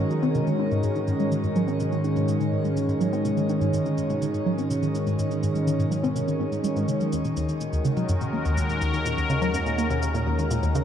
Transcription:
Already playing: synth drone G#2, analog synth pad D#3 G#3 C#4 F#4 A#4
0.10 synth arpeggio sound F#3, cabasa
0.23 synth arpeggio sound C4, high tom, cabasa
0.35 synth arpeggio sound C3, cabasa
0.47 synth arpeggio sound D#3, cabasa
0.59 synth arpeggio sound D#4
0.71 synth arpeggio sound G#2, cabasa
0.83 synth arpeggio sound G#2, cabasa
0.95 synth arpeggio sound D#3, cabasa
1.07 synth arpeggio sound G#2, cabasa
1.20 synth arpeggio sound G#3, cabasa
1.32 synth arpeggio sound D#3, cabasa
1.44 synth arpeggio sound G#2, cabasa
1.56 synth arpeggio sound F#3, cabasa
1.68 synth arpeggio sound C4, cabasa
1.80 synth arpeggio sound C3, cabasa
1.92 synth arpeggio sound D#3, cabasa
2.04 synth arpeggio sound D#4, cabasa
2.16 synth arpeggio sound G#2, high tom, cabasa
2.28 synth arpeggio sound G#2, cabasa
2.40 synth arpeggio sound D#3, cabasa
2.52 synth arpeggio sound G#2
2.65 synth arpeggio sound G#3, cabasa
2.77 synth arpeggio sound D#3, cabasa
2.89 synth arpeggio sound G#2, cabasa
3.01 synth arpeggio sound F#3, cabasa
3.13 synth arpeggio sound C4, cabasa
3.25 synth arpeggio sound C3, cabasa
3.37 synth arpeggio sound D#3, cabasa
3.49 synth arpeggio sound D#4, cabasa
3.61 synth arpeggio sound G#2, cabasa
3.73 synth arpeggio sound G#2, cabasa
3.86 synth arpeggio sound D#3, cabasa
3.98 synth arpeggio sound G#2, cabasa
4.10 synth arpeggio sound G#3, high tom, cabasa
4.22 synth arpeggio sound D#3, cabasa
4.34 synth arpeggio sound G#2, cabasa
4.46 synth arpeggio sound F#3
4.58 synth arpeggio sound C4, cabasa
4.70 synth arpeggio sound C3, cabasa
4.82 synth arpeggio sound D#3, cabasa
4.95 synth arpeggio sound D#4, cabasa
5.07 synth arpeggio sound G#2, cabasa
5.19 synth arpeggio sound G#2, cabasa
5.31 synth arpeggio sound D#3, cabasa
5.43 synth arpeggio sound G#2, cabasa
5.55 synth arpeggio sound G#3, cabasa
5.67 synth arpeggio sound D#3, cabasa
5.79 synth arpeggio sound G#2, high tom, cabasa
5.91 synth arpeggio sound F#3, cabasa
6.03 synth arpeggio sound C4, high tom, cabasa
6.16 synth arpeggio sound C3, cabasa
6.28 synth arpeggio sound D#3, cabasa
6.40 synth arpeggio sound G#2
6.52 synth arpeggio sound G#2, cabasa
6.64 synth arpeggio sound G#3, cabasa
6.76 synth arpeggio sound G#2, cabasa
6.88 synth arpeggio sound C#3, cabasa
7.01 synth arpeggio sound F#3, cabasa
7.12 synth drone D#2, synth arpeggio sound D#2, analog synth pad D#3, cabasa
7.25 synth arpeggio sound A#2, cabasa
7.34 synth arpeggio sound D#2, analog synth pad G#3, cabasa
7.49 synth arpeggio sound D#3, cabasa
7.56 analog synth pad C#4 F#4
7.61 synth arpeggio sound A#2, analog synth pad A#4, cabasa
7.73 synth arpeggio sound D#2, cabasa
7.85 synth arpeggio sound C#3, cabasa
7.97 synth arpeggio sound F#3, high tom, cabasa
8.09 synth arpeggio sound F#2, cabasa
8.21 synth arpeggio sound A#2, cabasa
8.33 synth arpeggio sound A#3
8.45 synth arpeggio sound D#2, cabasa
8.57 synth arpeggio sound D#2, cabasa
8.69 synth arpeggio sound A#2, cabasa
8.81 synth arpeggio sound D#2, cabasa
8.94 synth arpeggio sound D#3, cabasa
9.05 synth arpeggio sound A#2, cabasa
9.18 synth arpeggio sound D#2, cabasa
9.30 synth arpeggio sound C#3, cabasa
9.42 synth arpeggio sound F#3, cabasa
9.54 synth arpeggio sound F#2, cabasa
9.66 synth arpeggio sound A#2, cabasa
9.78 synth arpeggio sound A#3, cabasa
9.90 synth arpeggio sound D#2, high tom, cabasa
10.02 synth arpeggio sound D#2, cabasa
10.14 synth arpeggio sound A#2, cabasa
10.27 synth arpeggio sound D#2
10.39 synth arpeggio sound D#3, cabasa
10.51 synth arpeggio sound A#2, cabasa
10.63 synth arpeggio sound D#2, cabasa
10.75 synth arpeggio sound C#3, cabasa

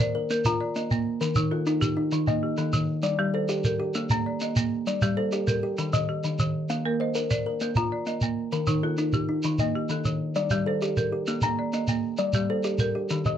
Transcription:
Already playing: kalimba A#4 C5
0.00 marimba D5
0.15 kalimba A#4
0.30 kalimba A#3, marimba A#4, shekere
0.45 marimba F4, kalimba A#5, shekere
0.60 marimba D5
0.75 kalimba A#3, marimba D#5, shekere
0.91 marimba A#3, shekere
1.21 kalimba D#3 A#4, shekere
1.35 marimba D#3 D#4, shekere
1.51 kalimba F4, marimba A4
1.67 kalimba D#4, shekere
1.82 marimba G4, shekere
1.97 kalimba D#4
2.12 kalimba D#3, marimba D#4, shekere
2.27 marimba A#3, kalimba D#5, shekere
2.43 marimba G4
2.57 kalimba D#3, marimba A4, shekere
2.73 marimba D#3, shekere
3.03 kalimba G3 D5, shekere
3.19 marimba G3 G4
3.34 kalimba A4, marimba C5
3.49 kalimba G4, shekere
3.64 marimba A#4, shekere
3.80 kalimba G4
3.94 kalimba A#3, marimba G4, shekere
4.10 marimba A#3, kalimba A#5, shekere
4.26 marimba D5
4.40 kalimba A#3, marimba D#5, shekere
4.56 marimba A#3, shekere
4.87 kalimba G3 D5, shekere
5.01 marimba G3 G4, shekere
5.17 kalimba A4, marimba C5
5.32 kalimba G4, shekere
5.47 marimba A#4, shekere
5.63 kalimba G4
5.78 kalimba D#3, marimba G4, shekere
5.93 marimba D#3, kalimba D#5, shekere
6.09 marimba G4
6.24 kalimba D#3, shekere
6.39 marimba D#3, shekere
6.69 kalimba A#3 F5, shekere
6.85 marimba A#3 A#4
7.00 kalimba C5, marimba D#5
7.15 kalimba A#4, shekere
7.31 marimba D5, shekere
7.46 kalimba A#4
7.61 kalimba A#3, marimba A#4, shekere
7.75 marimba F4, kalimba A#5, shekere
7.92 marimba D5
8.06 kalimba A#3, marimba D#5, shekere
8.21 marimba A#3, shekere
8.52 kalimba D#3 A#4, shekere
8.67 marimba D#3 D#4, shekere
8.83 kalimba F4, marimba A4
8.98 kalimba D#4, shekere
9.13 marimba G4, shekere
9.29 kalimba D#4
9.43 kalimba D#3, marimba D#4, shekere
9.58 marimba A#3, kalimba D#5, shekere
9.76 marimba G4
9.89 kalimba D#3, marimba A4, shekere
10.05 marimba D#3, shekere
10.35 kalimba G3 D5, shekere
10.50 marimba G3 G4, shekere
10.66 kalimba A4, marimba C5
10.82 kalimba G4, shekere
10.97 marimba A#4, shekere
11.12 kalimba G4
11.27 kalimba A#3, marimba G4, shekere
11.42 marimba A#3, kalimba A#5, shekere
11.59 marimba D5
11.73 kalimba A#3, marimba D#5, shekere
11.88 marimba A#3, shekere
12.18 kalimba G3 D5, shekere
12.33 marimba G3 G4, shekere
12.50 kalimba A4, marimba C5
12.64 kalimba G4, shekere
12.78 marimba A#4, shekere
12.95 kalimba G4
13.10 kalimba D#3, marimba G4, shekere
13.25 marimba D#3, kalimba D#5, shekere

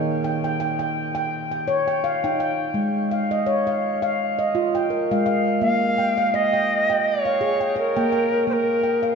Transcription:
Already playing: handpan D#3 D#4
0.24 handpan G5
0.44 handpan G5
0.60 handpan G5
0.79 handpan G5
1.15 handpan G5
1.51 handpan G5
1.68 handpan C#5
1.88 handpan G5
2.04 handpan F5
2.24 handpan D#4 G5
2.40 handpan G5
2.74 handpan G#3
3.11 handpan F5
3.31 handpan D#5
3.46 handpan C#5
3.67 handpan F5
4.02 handpan F5
4.39 handpan D#5
4.55 handpan F4
4.75 handpan G5
4.90 handpan A#4
5.11 handpan G#3 F5
5.26 handpan F5
5.61 handpan A#3, native american-style wooden flute F5
5.98 handpan G5
6.18 handpan F5
6.26 native american-style wooden flute F5
6.34 handpan D#5, native american-style wooden flute D#5
6.53 handpan G5
6.90 handpan G5
7.08 native american-style wooden flute C#5
7.25 handpan F5
7.41 handpan G#4
7.61 handpan G5
7.76 native american-style wooden flute A#4, handpan C#5
7.96 handpan A#3 G5
8.12 handpan G5
8.47 handpan A#3, native american-style wooden flute C5
8.53 native american-style wooden flute A#4
8.83 handpan G5
9.03 handpan F5

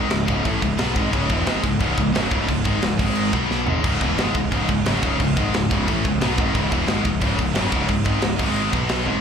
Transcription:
Already playing: distorted electric guitar G#2 D#3 G#3
0.09 fingered electric bass C#1, distorted electric guitar C#2 G#2, snare, crash
0.25 fingered electric bass C#1, distorted electric guitar C#2 G#2 C#3, kick, crash
0.42 fingered electric bass A1, distorted electric guitar A2 E3 A3, kick, crash
0.62 fingered electric bass C#1, distorted electric guitar C#2 G#2, kick, crash
0.78 fingered electric bass B1, distorted electric guitar B2 F#3 B3, snare, crash
0.94 fingered electric bass G#1, distorted electric guitar G#2 D#3 G#3, kick, crash
1.12 fingered electric bass C#1, distorted electric guitar C#2 G#2 C#3, kick, crash
1.29 fingered electric bass E1, distorted electric guitar E2 B2 E3, kick, crash
1.46 fingered electric bass G#1, distorted electric guitar G#2 D#3 G#3, snare, crash
1.64 fingered electric bass C#1, distorted electric guitar C#2 G#2, kick, crash
1.79 fingered electric bass C#1, distorted electric guitar C#2 G#2 C#3, kick, crash
1.97 fingered electric bass C#1, distorted electric guitar C#2 G#2, kick, crash
2.14 fingered electric bass F#1, distorted electric guitar F#2 C#3 F#3, snare, crash
2.31 fingered electric bass C#1, distorted electric guitar C#2 G#2 C#3, kick, crash
2.48 fingered electric bass C#1, distorted electric guitar C#2 G#2, kick, crash
2.64 fingered electric bass G#1, distorted electric guitar G#2 D#3 G#3, kick, crash
2.82 fingered electric bass C#1, distorted electric guitar C#2 G#2, snare, crash
2.99 fingered electric bass G#1, distorted electric guitar G#2 D#3 G#3, kick, crash
3.15 crash
3.31 fingered electric bass B1, distorted electric guitar B2 F#3 B3, kick, crash
3.51 snare
3.66 fingered electric bass G#1, distorted electric guitar G#2 D#3 G#3, floor tom
3.84 fingered electric bass C#1, distorted electric guitar C#2 G#2 C#3, kick, crash
4.01 fingered electric bass E1, distorted electric guitar E2 B2 E3, kick, crash
4.17 fingered electric bass G#1, distorted electric guitar G#2 D#3 G#3, snare, crash
4.34 fingered electric bass C#1, distorted electric guitar C#2 G#2, kick, crash
4.51 fingered electric bass C#1, distorted electric guitar C#2 G#2 C#3, kick, crash
4.69 fingered electric bass C#1, distorted electric guitar C#2 G#2, kick, crash
4.86 fingered electric bass F#1, distorted electric guitar F#2 C#3 F#3, snare, crash
5.03 fingered electric bass C#1, distorted electric guitar C#2 G#2 C#3, kick, crash
5.20 fingered electric bass C#1, distorted electric guitar C#2 G#2, kick, crash
5.36 fingered electric bass G#1, distorted electric guitar G#2 D#3 G#3, kick, crash
5.54 fingered electric bass C#1, distorted electric guitar C#2 G#2, snare, crash
5.70 fingered electric bass C#1, distorted electric guitar C#2 G#2 C#3, kick, crash
5.88 fingered electric bass A1, distorted electric guitar A2 E3 A3, kick, crash
6.05 fingered electric bass C#1, distorted electric guitar C#2 G#2, kick, crash
6.21 fingered electric bass B1, distorted electric guitar B2 F#3 B3, snare, crash
6.37 fingered electric bass G#1, distorted electric guitar G#2 D#3 G#3, kick, crash
6.54 fingered electric bass C#1, distorted electric guitar C#2 G#2 C#3, kick, crash
6.71 fingered electric bass E1, distorted electric guitar E2 B2 E3, kick, crash
6.87 fingered electric bass G#1, distorted electric guitar G#2 D#3 G#3, snare, crash
7.04 fingered electric bass C#1, distorted electric guitar C#2 G#2, kick, crash
7.21 fingered electric bass C#1, distorted electric guitar C#2 G#2 C#3, kick, crash
7.39 fingered electric bass C#1, distorted electric guitar C#2 G#2, kick, crash
7.54 fingered electric bass F#1, distorted electric guitar F#2 C#3 F#3, snare, crash
7.71 fingered electric bass C#1, distorted electric guitar C#2 G#2 C#3, kick, crash
7.88 fingered electric bass C#1, distorted electric guitar C#2 G#2, kick, crash
8.04 fingered electric bass G#1, distorted electric guitar G#2 D#3 G#3, kick, crash
8.21 fingered electric bass C#1, distorted electric guitar C#2 G#2, snare, crash
8.39 fingered electric bass G#1, distorted electric guitar G#2 D#3 G#3, kick, crash
8.56 crash
8.72 fingered electric bass B1, distorted electric guitar B2 F#3 B3, kick, crash
8.89 snare, crash
9.06 fingered electric bass G#1, distorted electric guitar G#2 D#3 G#3, high tom

